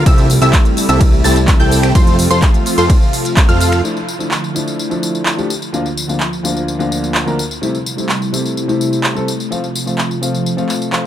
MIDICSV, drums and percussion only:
0, 0, Header, 1, 2, 480
1, 0, Start_track
1, 0, Key_signature, -1, "major"
1, 0, Tempo, 472441
1, 64, Time_signature, 4, 2, 24, 8
1, 11242, End_track
2, 0, Start_track
2, 0, Title_t, "Drums"
2, 63, Note_on_c, 9, 36, 118
2, 63, Note_on_c, 9, 42, 81
2, 63, Note_on_c, 9, 51, 68
2, 71, Note_on_c, 9, 54, 46
2, 165, Note_off_c, 9, 36, 0
2, 165, Note_off_c, 9, 42, 0
2, 165, Note_off_c, 9, 51, 0
2, 173, Note_off_c, 9, 54, 0
2, 183, Note_on_c, 9, 42, 38
2, 191, Note_on_c, 9, 54, 25
2, 284, Note_off_c, 9, 42, 0
2, 293, Note_off_c, 9, 54, 0
2, 303, Note_on_c, 9, 46, 104
2, 311, Note_on_c, 9, 54, 87
2, 405, Note_off_c, 9, 46, 0
2, 413, Note_off_c, 9, 54, 0
2, 423, Note_on_c, 9, 42, 56
2, 431, Note_on_c, 9, 54, 37
2, 525, Note_off_c, 9, 42, 0
2, 533, Note_off_c, 9, 54, 0
2, 542, Note_on_c, 9, 39, 115
2, 543, Note_on_c, 9, 36, 115
2, 543, Note_on_c, 9, 42, 82
2, 543, Note_on_c, 9, 51, 70
2, 551, Note_on_c, 9, 54, 48
2, 643, Note_off_c, 9, 39, 0
2, 645, Note_off_c, 9, 36, 0
2, 645, Note_off_c, 9, 42, 0
2, 645, Note_off_c, 9, 51, 0
2, 653, Note_off_c, 9, 54, 0
2, 663, Note_on_c, 9, 42, 39
2, 671, Note_on_c, 9, 54, 25
2, 765, Note_off_c, 9, 42, 0
2, 773, Note_off_c, 9, 54, 0
2, 783, Note_on_c, 9, 46, 96
2, 791, Note_on_c, 9, 54, 86
2, 884, Note_off_c, 9, 46, 0
2, 892, Note_off_c, 9, 54, 0
2, 903, Note_on_c, 9, 42, 55
2, 911, Note_on_c, 9, 54, 37
2, 1005, Note_off_c, 9, 42, 0
2, 1013, Note_off_c, 9, 54, 0
2, 1023, Note_on_c, 9, 36, 119
2, 1023, Note_on_c, 9, 42, 86
2, 1023, Note_on_c, 9, 51, 71
2, 1031, Note_on_c, 9, 54, 49
2, 1124, Note_off_c, 9, 42, 0
2, 1124, Note_off_c, 9, 51, 0
2, 1125, Note_off_c, 9, 36, 0
2, 1132, Note_off_c, 9, 54, 0
2, 1151, Note_on_c, 9, 54, 23
2, 1253, Note_off_c, 9, 54, 0
2, 1263, Note_on_c, 9, 46, 106
2, 1271, Note_on_c, 9, 54, 89
2, 1365, Note_off_c, 9, 46, 0
2, 1373, Note_off_c, 9, 54, 0
2, 1382, Note_on_c, 9, 42, 54
2, 1390, Note_on_c, 9, 54, 37
2, 1484, Note_off_c, 9, 42, 0
2, 1492, Note_off_c, 9, 54, 0
2, 1501, Note_on_c, 9, 39, 114
2, 1503, Note_on_c, 9, 36, 117
2, 1503, Note_on_c, 9, 42, 81
2, 1503, Note_on_c, 9, 51, 70
2, 1511, Note_on_c, 9, 54, 48
2, 1603, Note_off_c, 9, 39, 0
2, 1604, Note_off_c, 9, 42, 0
2, 1604, Note_off_c, 9, 51, 0
2, 1605, Note_off_c, 9, 36, 0
2, 1612, Note_off_c, 9, 54, 0
2, 1631, Note_on_c, 9, 54, 24
2, 1733, Note_off_c, 9, 54, 0
2, 1743, Note_on_c, 9, 46, 88
2, 1751, Note_on_c, 9, 54, 83
2, 1845, Note_off_c, 9, 46, 0
2, 1853, Note_off_c, 9, 54, 0
2, 1863, Note_on_c, 9, 26, 81
2, 1863, Note_on_c, 9, 42, 58
2, 1871, Note_on_c, 9, 54, 37
2, 1965, Note_off_c, 9, 26, 0
2, 1965, Note_off_c, 9, 42, 0
2, 1973, Note_off_c, 9, 54, 0
2, 1983, Note_on_c, 9, 36, 119
2, 1983, Note_on_c, 9, 42, 85
2, 1983, Note_on_c, 9, 51, 68
2, 1991, Note_on_c, 9, 54, 46
2, 2085, Note_off_c, 9, 36, 0
2, 2085, Note_off_c, 9, 42, 0
2, 2085, Note_off_c, 9, 51, 0
2, 2092, Note_off_c, 9, 54, 0
2, 2103, Note_on_c, 9, 42, 41
2, 2111, Note_on_c, 9, 54, 23
2, 2205, Note_off_c, 9, 42, 0
2, 2213, Note_off_c, 9, 54, 0
2, 2223, Note_on_c, 9, 46, 108
2, 2231, Note_on_c, 9, 54, 86
2, 2325, Note_off_c, 9, 46, 0
2, 2333, Note_off_c, 9, 54, 0
2, 2343, Note_on_c, 9, 42, 58
2, 2351, Note_on_c, 9, 54, 37
2, 2445, Note_off_c, 9, 42, 0
2, 2453, Note_off_c, 9, 54, 0
2, 2462, Note_on_c, 9, 39, 119
2, 2463, Note_on_c, 9, 36, 119
2, 2463, Note_on_c, 9, 42, 84
2, 2463, Note_on_c, 9, 51, 65
2, 2471, Note_on_c, 9, 54, 48
2, 2563, Note_off_c, 9, 39, 0
2, 2565, Note_off_c, 9, 36, 0
2, 2565, Note_off_c, 9, 42, 0
2, 2565, Note_off_c, 9, 51, 0
2, 2573, Note_off_c, 9, 54, 0
2, 2583, Note_on_c, 9, 42, 40
2, 2591, Note_on_c, 9, 54, 24
2, 2685, Note_off_c, 9, 42, 0
2, 2693, Note_off_c, 9, 54, 0
2, 2703, Note_on_c, 9, 46, 93
2, 2711, Note_on_c, 9, 54, 90
2, 2805, Note_off_c, 9, 46, 0
2, 2812, Note_off_c, 9, 54, 0
2, 2823, Note_on_c, 9, 42, 56
2, 2831, Note_on_c, 9, 54, 36
2, 2925, Note_off_c, 9, 42, 0
2, 2933, Note_off_c, 9, 54, 0
2, 2943, Note_on_c, 9, 36, 118
2, 2944, Note_on_c, 9, 42, 87
2, 2944, Note_on_c, 9, 51, 68
2, 2952, Note_on_c, 9, 54, 47
2, 3045, Note_off_c, 9, 36, 0
2, 3045, Note_off_c, 9, 42, 0
2, 3045, Note_off_c, 9, 51, 0
2, 3053, Note_off_c, 9, 54, 0
2, 3071, Note_on_c, 9, 54, 23
2, 3173, Note_off_c, 9, 54, 0
2, 3183, Note_on_c, 9, 46, 107
2, 3191, Note_on_c, 9, 54, 84
2, 3285, Note_off_c, 9, 46, 0
2, 3293, Note_off_c, 9, 54, 0
2, 3304, Note_on_c, 9, 42, 58
2, 3312, Note_on_c, 9, 54, 35
2, 3405, Note_off_c, 9, 42, 0
2, 3413, Note_off_c, 9, 54, 0
2, 3422, Note_on_c, 9, 39, 122
2, 3423, Note_on_c, 9, 36, 120
2, 3423, Note_on_c, 9, 42, 84
2, 3423, Note_on_c, 9, 51, 69
2, 3431, Note_on_c, 9, 54, 47
2, 3523, Note_off_c, 9, 39, 0
2, 3525, Note_off_c, 9, 36, 0
2, 3525, Note_off_c, 9, 42, 0
2, 3525, Note_off_c, 9, 51, 0
2, 3533, Note_off_c, 9, 54, 0
2, 3543, Note_on_c, 9, 42, 40
2, 3551, Note_on_c, 9, 54, 23
2, 3645, Note_off_c, 9, 42, 0
2, 3653, Note_off_c, 9, 54, 0
2, 3663, Note_on_c, 9, 46, 86
2, 3671, Note_on_c, 9, 54, 81
2, 3765, Note_off_c, 9, 46, 0
2, 3773, Note_off_c, 9, 54, 0
2, 3783, Note_on_c, 9, 26, 76
2, 3783, Note_on_c, 9, 42, 58
2, 3791, Note_on_c, 9, 54, 36
2, 3885, Note_off_c, 9, 26, 0
2, 3885, Note_off_c, 9, 42, 0
2, 3893, Note_off_c, 9, 54, 0
2, 3911, Note_on_c, 9, 54, 39
2, 4012, Note_off_c, 9, 54, 0
2, 4030, Note_on_c, 9, 54, 21
2, 4132, Note_off_c, 9, 54, 0
2, 4151, Note_on_c, 9, 54, 72
2, 4252, Note_off_c, 9, 54, 0
2, 4271, Note_on_c, 9, 54, 31
2, 4373, Note_off_c, 9, 54, 0
2, 4381, Note_on_c, 9, 39, 111
2, 4391, Note_on_c, 9, 54, 40
2, 4483, Note_off_c, 9, 39, 0
2, 4492, Note_off_c, 9, 54, 0
2, 4511, Note_on_c, 9, 54, 20
2, 4612, Note_off_c, 9, 54, 0
2, 4631, Note_on_c, 9, 54, 71
2, 4732, Note_off_c, 9, 54, 0
2, 4751, Note_on_c, 9, 54, 29
2, 4852, Note_off_c, 9, 54, 0
2, 4871, Note_on_c, 9, 54, 42
2, 4972, Note_off_c, 9, 54, 0
2, 4991, Note_on_c, 9, 54, 20
2, 5092, Note_off_c, 9, 54, 0
2, 5111, Note_on_c, 9, 54, 74
2, 5212, Note_off_c, 9, 54, 0
2, 5231, Note_on_c, 9, 54, 30
2, 5332, Note_off_c, 9, 54, 0
2, 5341, Note_on_c, 9, 39, 112
2, 5351, Note_on_c, 9, 54, 40
2, 5443, Note_off_c, 9, 39, 0
2, 5453, Note_off_c, 9, 54, 0
2, 5471, Note_on_c, 9, 54, 21
2, 5572, Note_off_c, 9, 54, 0
2, 5591, Note_on_c, 9, 54, 71
2, 5692, Note_off_c, 9, 54, 0
2, 5711, Note_on_c, 9, 54, 31
2, 5812, Note_off_c, 9, 54, 0
2, 5831, Note_on_c, 9, 54, 36
2, 5932, Note_off_c, 9, 54, 0
2, 5951, Note_on_c, 9, 54, 19
2, 6052, Note_off_c, 9, 54, 0
2, 6070, Note_on_c, 9, 54, 72
2, 6172, Note_off_c, 9, 54, 0
2, 6191, Note_on_c, 9, 54, 30
2, 6292, Note_off_c, 9, 54, 0
2, 6301, Note_on_c, 9, 39, 110
2, 6311, Note_on_c, 9, 54, 39
2, 6403, Note_off_c, 9, 39, 0
2, 6412, Note_off_c, 9, 54, 0
2, 6431, Note_on_c, 9, 54, 20
2, 6532, Note_off_c, 9, 54, 0
2, 6551, Note_on_c, 9, 54, 73
2, 6653, Note_off_c, 9, 54, 0
2, 6671, Note_on_c, 9, 54, 28
2, 6772, Note_off_c, 9, 54, 0
2, 6791, Note_on_c, 9, 54, 41
2, 6892, Note_off_c, 9, 54, 0
2, 6910, Note_on_c, 9, 54, 19
2, 7012, Note_off_c, 9, 54, 0
2, 7030, Note_on_c, 9, 54, 70
2, 7132, Note_off_c, 9, 54, 0
2, 7151, Note_on_c, 9, 54, 30
2, 7252, Note_off_c, 9, 54, 0
2, 7261, Note_on_c, 9, 39, 111
2, 7270, Note_on_c, 9, 54, 39
2, 7362, Note_off_c, 9, 39, 0
2, 7372, Note_off_c, 9, 54, 0
2, 7391, Note_on_c, 9, 54, 20
2, 7492, Note_off_c, 9, 54, 0
2, 7510, Note_on_c, 9, 54, 66
2, 7612, Note_off_c, 9, 54, 0
2, 7631, Note_on_c, 9, 54, 31
2, 7732, Note_off_c, 9, 54, 0
2, 7750, Note_on_c, 9, 54, 37
2, 7852, Note_off_c, 9, 54, 0
2, 7870, Note_on_c, 9, 54, 20
2, 7972, Note_off_c, 9, 54, 0
2, 7990, Note_on_c, 9, 54, 71
2, 8092, Note_off_c, 9, 54, 0
2, 8110, Note_on_c, 9, 54, 30
2, 8212, Note_off_c, 9, 54, 0
2, 8220, Note_on_c, 9, 39, 108
2, 8230, Note_on_c, 9, 54, 38
2, 8322, Note_off_c, 9, 39, 0
2, 8332, Note_off_c, 9, 54, 0
2, 8351, Note_on_c, 9, 54, 20
2, 8452, Note_off_c, 9, 54, 0
2, 8471, Note_on_c, 9, 54, 71
2, 8572, Note_off_c, 9, 54, 0
2, 8590, Note_on_c, 9, 54, 29
2, 8692, Note_off_c, 9, 54, 0
2, 8710, Note_on_c, 9, 54, 39
2, 8812, Note_off_c, 9, 54, 0
2, 8831, Note_on_c, 9, 54, 19
2, 8932, Note_off_c, 9, 54, 0
2, 8951, Note_on_c, 9, 54, 68
2, 9053, Note_off_c, 9, 54, 0
2, 9071, Note_on_c, 9, 54, 30
2, 9173, Note_off_c, 9, 54, 0
2, 9181, Note_on_c, 9, 39, 109
2, 9191, Note_on_c, 9, 54, 39
2, 9283, Note_off_c, 9, 39, 0
2, 9292, Note_off_c, 9, 54, 0
2, 9311, Note_on_c, 9, 54, 20
2, 9413, Note_off_c, 9, 54, 0
2, 9431, Note_on_c, 9, 54, 67
2, 9533, Note_off_c, 9, 54, 0
2, 9551, Note_on_c, 9, 54, 29
2, 9653, Note_off_c, 9, 54, 0
2, 9671, Note_on_c, 9, 54, 37
2, 9773, Note_off_c, 9, 54, 0
2, 9792, Note_on_c, 9, 54, 19
2, 9893, Note_off_c, 9, 54, 0
2, 9911, Note_on_c, 9, 54, 73
2, 10013, Note_off_c, 9, 54, 0
2, 10031, Note_on_c, 9, 54, 30
2, 10133, Note_off_c, 9, 54, 0
2, 10142, Note_on_c, 9, 39, 104
2, 10151, Note_on_c, 9, 54, 39
2, 10243, Note_off_c, 9, 39, 0
2, 10253, Note_off_c, 9, 54, 0
2, 10271, Note_on_c, 9, 54, 20
2, 10373, Note_off_c, 9, 54, 0
2, 10391, Note_on_c, 9, 54, 72
2, 10493, Note_off_c, 9, 54, 0
2, 10511, Note_on_c, 9, 54, 29
2, 10612, Note_off_c, 9, 54, 0
2, 10631, Note_on_c, 9, 54, 41
2, 10733, Note_off_c, 9, 54, 0
2, 10751, Note_on_c, 9, 54, 19
2, 10853, Note_off_c, 9, 54, 0
2, 10862, Note_on_c, 9, 39, 33
2, 10871, Note_on_c, 9, 54, 71
2, 10963, Note_off_c, 9, 39, 0
2, 10973, Note_off_c, 9, 54, 0
2, 10991, Note_on_c, 9, 54, 30
2, 11092, Note_off_c, 9, 54, 0
2, 11101, Note_on_c, 9, 39, 104
2, 11111, Note_on_c, 9, 54, 38
2, 11203, Note_off_c, 9, 39, 0
2, 11212, Note_off_c, 9, 54, 0
2, 11242, End_track
0, 0, End_of_file